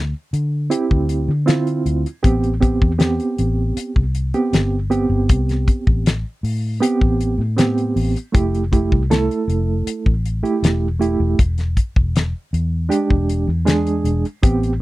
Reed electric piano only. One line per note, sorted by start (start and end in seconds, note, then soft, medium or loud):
0.70 1.30 C4 medium
0.70 1.30 E4 medium
0.70 1.30 G4 medium
1.46 2.06 C4 medium
1.46 2.06 E4 medium
1.46 2.06 F4 medium
2.23 2.53 B3 medium
2.23 2.53 C4 medium
2.23 2.53 G4 medium
2.60 2.91 B3 medium
2.60 2.91 C4 medium
2.60 2.91 G4 medium
2.98 4.02 B3 medium
2.98 4.02 C4 medium
2.98 4.02 G4 medium
4.34 4.78 B3 medium
4.34 4.78 C4 medium
4.34 4.78 G4 medium
4.90 6.08 B3 medium
4.90 6.08 C4 medium
4.90 6.08 G4 medium
6.81 7.40 B3 medium
6.81 7.40 C4 medium
6.81 7.40 G4 medium
7.57 8.16 B3 medium
7.57 8.16 C4 medium
7.57 8.17 G4 medium
8.32 8.62 A3 medium
8.32 8.63 E4 medium
8.32 8.63 G4 medium
8.72 9.01 A3 medium
8.72 9.02 E4 medium
8.72 9.02 G4 medium
9.10 10.13 A3 medium
9.10 10.13 E4 medium
9.10 10.13 A4 medium
10.43 10.87 A3 medium
10.43 10.87 E4 medium
10.43 10.87 G4 medium
11.00 11.38 A3 medium
11.00 11.39 E4 medium
11.00 11.39 G4 medium
12.89 13.48 G#3 medium
12.89 13.49 D4 medium
12.89 13.49 G4 medium
13.65 14.25 G#3 medium
13.65 14.25 D4 medium
13.65 14.25 G#4 medium
14.43 14.72 B3 medium
14.43 14.72 C4 medium
14.43 14.72 G4 medium